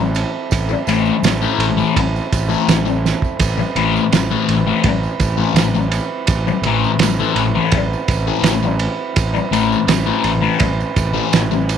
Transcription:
0.00 0.23 A1 medium
0.00 11.78 C4 medium
0.00 11.78 E4 medium
0.00 3.39 A4 medium
0.00 11.78 E5 medium
0.15 ride medium
0.15 tambourine medium
0.51 0.74 A1 medium
0.51 kick loud
0.51 ride medium
0.51 tambourine medium
0.68 muted distorted electric guitar stroke soft
0.68 tambourine soft
0.87 1.09 A1 medium
0.87 1.11 A2 medium
0.87 1.11 E3 medium
0.87 1.12 A3 medium
0.87 ride medium
0.87 tambourine medium
1.05 tambourine soft
1.23 1.45 A1 medium
1.23 muted distorted electric guitar stroke soft
1.23 snare medium
1.23 ride medium
1.23 tambourine medium
1.41 1.66 A2 medium
1.41 1.66 E3 medium
1.41 1.65 A3 medium
1.41 tambourine soft
1.58 1.81 A1 medium
1.58 ride medium
1.58 tambourine soft
1.77 1.94 A2 medium
1.77 1.95 E3 medium
1.77 1.95 A3 medium
1.77 tambourine soft
1.95 2.18 A1 medium
1.95 muted distorted electric guitar stroke soft
1.95 kick loud
1.95 ride medium
1.95 tambourine soft
2.16 tambourine soft
2.32 2.54 A1 medium
2.32 kick medium
2.32 ride medium
2.32 tambourine medium
2.49 2.74 A2 medium
2.49 2.74 E3 medium
2.49 2.73 A3 medium
2.49 tambourine soft
2.68 3.12 A1 medium
2.68 snare loud
2.68 ride medium
2.68 tambourine medium
2.85 muted distorted electric guitar stroke soft
2.85 tambourine soft
3.05 snare medium
3.05 tambourine medium
3.22 kick medium
3.22 tambourine soft
3.39 3.61 A1 medium
3.39 11.78 B4 medium
3.39 kick loud
3.39 ride medium
3.39 tambourine medium
3.57 muted distorted electric guitar stroke soft
3.57 tambourine soft
3.75 3.97 A1 medium
3.75 4.00 A2 medium
3.75 4.00 E3 medium
3.75 4.00 A3 medium
3.75 ride medium
3.96 tambourine soft
4.12 4.34 A1 medium
4.12 muted distorted electric guitar stroke soft
4.12 snare loud
4.12 ride medium
4.12 tambourine medium
4.31 4.55 A2 medium
4.31 4.54 E3 medium
4.31 4.54 A3 medium
4.48 4.70 A1 medium
4.48 ride medium
4.48 tambourine soft
4.67 4.84 A2 medium
4.67 4.84 E3 loud
4.67 4.85 A3 medium
4.84 5.06 A1 medium
4.84 muted distorted electric guitar stroke soft
4.84 kick medium
4.84 ride medium
4.84 tambourine soft
5.03 tambourine soft
5.19 5.42 A1 medium
5.19 kick medium
5.19 ride medium
5.19 tambourine medium
5.37 5.62 A2 medium
5.37 5.62 E3 medium
5.37 5.61 A3 medium
5.54 5.98 A1 medium
5.54 snare medium
5.54 ride medium
5.54 tambourine medium
5.74 muted distorted electric guitar stroke soft
5.74 tambourine soft
5.92 ride medium
5.92 tambourine medium
6.27 6.50 A1 medium
6.27 kick loud
6.27 ride medium
6.27 tambourine medium
6.47 muted distorted electric guitar stroke soft
6.47 tambourine soft
6.62 6.84 A1 medium
6.62 ride medium
6.66 6.88 A2 medium
6.66 6.89 E3 medium
6.66 6.89 A3 medium
6.84 tambourine soft
6.99 7.21 A1 medium
6.99 muted distorted electric guitar stroke soft
6.99 snare loud
6.99 ride medium
6.99 tambourine medium
7.20 7.43 A2 medium
7.20 7.43 E3 medium
7.20 7.42 A3 medium
7.35 7.57 A1 medium
7.35 ride medium
7.35 tambourine soft
7.55 7.73 A2 medium
7.55 7.73 E3 medium
7.55 7.73 A3 loud
7.72 7.94 A1 loud
7.72 muted distorted electric guitar stroke soft
7.72 kick loud
7.72 ride medium
7.72 tambourine soft
7.93 tambourine soft
8.08 8.30 A1 medium
8.08 kick medium
8.08 ride medium
8.08 tambourine medium
8.27 8.51 A2 medium
8.27 8.51 E3 medium
8.27 8.50 A3 medium
8.42 8.86 A1 medium
8.42 snare medium
8.42 ride medium
8.42 tambourine medium
8.63 muted distorted electric guitar stroke soft
8.63 tambourine soft
8.79 ride medium
9.16 9.38 A1 medium
9.16 kick loud
9.16 ride medium
9.16 tambourine medium
9.34 muted distorted electric guitar stroke soft
9.34 tambourine soft
9.51 9.73 A1 medium
9.51 9.75 A2 medium
9.51 9.76 E3 medium
9.51 9.76 A3 medium
9.51 ride medium
9.51 tambourine medium
9.72 tambourine soft
9.87 10.09 A1 medium
9.87 muted distorted electric guitar stroke soft
9.87 snare loud
9.87 ride medium
9.87 tambourine medium
10.06 10.30 A2 medium
10.06 10.30 E3 medium
10.06 10.30 A3 medium
10.24 10.46 A1 loud
10.24 ride medium
10.24 tambourine soft
10.41 10.58 A2 medium
10.41 10.59 E3 medium
10.41 10.59 A3 loud
10.59 10.82 A1 loud
10.59 muted distorted electric guitar stroke soft
10.59 kick loud
10.59 ride medium
10.59 tambourine soft
10.80 tambourine soft
10.96 11.18 A1 medium
10.96 kick medium
10.96 ride medium
10.96 tambourine medium
11.14 11.38 A2 medium
11.14 11.38 E3 medium
11.14 11.38 A3 medium
11.33 11.77 A1 medium
11.33 snare loud
11.33 ride medium
11.33 tambourine medium
11.51 muted distorted electric guitar stroke medium
11.51 tambourine soft
11.69 ride medium
11.69 tambourine medium

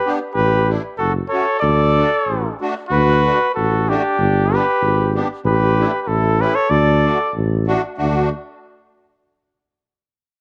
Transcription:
0.00 0.16 G4 medium
0.00 0.18 B4 medium
0.06 0.19 B3 medium
0.06 0.19 D4 medium
0.06 0.19 G4 medium
0.35 0.76 A1 medium
0.35 0.70 G4 medium
0.35 0.70 B4 loud
0.69 0.82 A3 medium
0.69 0.82 D4 medium
0.69 0.82 E4 medium
0.98 1.21 F#1 medium
0.98 1.14 F#4 medium
0.98 1.13 A4 medium
1.29 1.46 A3 medium
1.29 1.46 C#4 medium
1.29 1.46 F#4 medium
1.29 1.58 A4 medium
1.29 1.59 C#5 medium
1.59 2.04 D2 loud
1.59 2.56 A4 medium
1.59 2.55 D5 loud
1.97 2.10 A3 medium
1.97 2.10 D4 medium
1.97 2.10 F#4 medium
2.27 2.49 A1 medium
2.61 2.74 A3 medium
2.61 2.74 D4 medium
2.61 2.74 F#4 medium
2.89 3.32 D2 loud
2.89 3.50 F#4 loud
2.89 3.52 B4 loud
3.26 3.39 A3 medium
3.26 3.39 D4 medium
3.26 3.39 F#4 medium
3.54 3.97 A1 medium
3.54 3.91 F#4 medium
3.54 3.90 A4 medium
3.88 4.02 A3 medium
3.88 4.55 D4 medium
3.88 4.02 D4 medium
3.88 4.03 F#4 medium
3.88 4.56 G4 medium
4.18 4.59 G1 loud
4.52 4.65 B3 medium
4.52 4.65 D4 medium
4.52 4.66 G4 medium
4.52 5.15 G4 medium
4.52 5.16 B4 medium
4.81 5.22 G#1 medium
5.15 5.28 B3 medium
5.15 5.28 D4 medium
5.15 5.28 G4 medium
5.44 5.85 A1 loud
5.44 6.00 G4 medium
5.44 6.02 B4 loud
5.78 5.91 A3 medium
5.78 5.92 D4 medium
5.78 5.92 E4 medium
6.00 6.10 G4 soft
6.00 6.09 B4 medium
6.07 6.49 A1 medium
6.07 6.42 E4 medium
6.07 6.42 A4 medium
6.40 6.54 A3 medium
6.40 6.54 C#4 medium
6.40 6.54 E4 medium
6.40 6.56 G4 medium
6.40 6.57 B4 loud
6.55 6.69 A4 medium
6.55 6.72 C#5 loud
6.69 7.12 D2 loud
6.69 7.34 A4 medium
6.69 7.35 D5 loud
7.05 7.18 A3 medium
7.05 7.18 D4 medium
7.05 7.19 F#4 medium
7.34 7.76 A1 medium
7.67 7.82 A3 medium
7.67 7.82 D4 medium
7.67 7.82 F#4 medium
7.98 8.30 D2 medium
7.98 8.30 A3 medium
7.98 8.29 D4 medium
7.98 8.30 F#4 medium

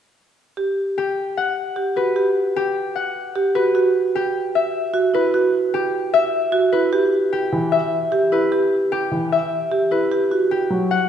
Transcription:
0.57 0.83 G4 medium
0.98 2.55 G4 medium
1.37 2.94 F#5 soft
1.76 2.02 G4 medium
1.96 2.22 F#4 medium
1.96 3.54 B4 medium
2.16 2.42 G4 medium
2.56 4.14 G4 medium
2.96 6.86 F#5 medium
3.35 3.61 G4 medium
3.55 3.74 F#4 medium
3.55 5.13 B4 medium
3.75 4.01 F#4 medium
4.15 5.73 G4 medium
4.55 6.12 E5 medium
4.94 5.20 F#4 medium
5.14 5.40 E4 medium
5.14 6.71 B4 medium
5.34 5.60 F#4 medium
5.74 7.31 G4 medium
6.14 7.71 E5 medium
6.52 6.79 F#4 medium
6.72 6.99 E4 medium
6.72 8.31 B4 medium
6.93 7.19 G4 medium
7.33 8.91 G4 medium
7.52 7.78 E3 medium
7.72 9.31 E5 medium
8.12 8.38 G4 medium
8.32 8.58 E4 medium
8.32 9.90 B4 medium
8.52 8.78 G4 medium
8.92 10.50 G4 medium
9.11 9.37 E3 medium
9.32 11.09 E5 medium
9.71 9.97 G4 medium
9.91 10.17 E4 medium
9.91 11.09 B4 soft
10.12 10.37 G4 medium
10.31 10.57 F#4 medium
10.51 11.09 G4 medium
10.70 10.96 F#3 medium
10.91 11.09 F#5 medium

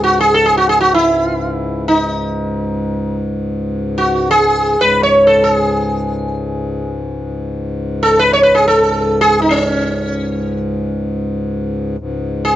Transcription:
0.00 4.77 C#2 medium
0.00 4.76 G#2 medium
0.00 0.18 F#4 medium
0.20 0.34 G#4 medium
0.34 0.46 A4 medium
0.46 0.57 G#4 medium
0.57 0.68 F#4 medium
0.69 0.80 G#4 medium
0.80 0.94 F#4 medium
0.94 1.83 E4 medium
1.88 3.16 D#4 medium
3.98 4.30 F#4 medium
4.31 4.81 G#4 medium
4.78 11.97 C#2 medium
4.78 11.96 G#2 medium
4.78 5.02 B4 medium
5.03 5.26 C#5 medium
5.27 5.43 A4 medium
5.44 6.91 G#4 medium
8.03 8.19 A4 medium
8.19 8.32 B4 medium
8.33 8.43 C#5 medium
8.43 8.54 B4 medium
8.55 8.67 G#4 medium
8.68 9.21 A4 medium
9.21 9.41 G#4 medium
9.42 9.49 D#4 medium
9.51 11.37 C#4 medium
11.98 12.56 C#2 medium
11.98 12.56 G#2 medium
12.45 12.56 G#4 medium

